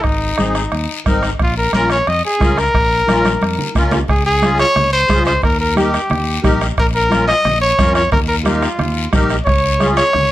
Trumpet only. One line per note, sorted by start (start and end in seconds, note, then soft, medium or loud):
0.02 1.05 D#4 medium
1.43 1.57 F4 medium
1.58 1.73 A#4 medium
1.75 1.90 A#4 medium
1.91 2.10 C#5 medium
2.08 2.24 D#5 loud
2.25 2.60 G#4 loud
2.59 3.76 A#4 medium
4.09 4.25 G#4 medium
4.26 4.57 G#4 medium
4.60 4.91 C#5 loud
4.93 5.24 C5 loud
5.26 5.42 C5 medium
5.44 5.59 A#4 medium
5.61 5.76 A#4 medium
5.77 6.40 G4 medium
6.80 6.87 A#4 medium
6.95 7.26 A#4 loud
7.28 7.59 D#5 loud
7.61 7.93 C#5 medium
7.95 8.11 C#5 medium
8.12 8.20 A#4 medium
8.28 8.36 A#4 medium
8.45 9.08 F4 medium
9.45 9.92 C#5 medium
9.97 10.32 C#5 loud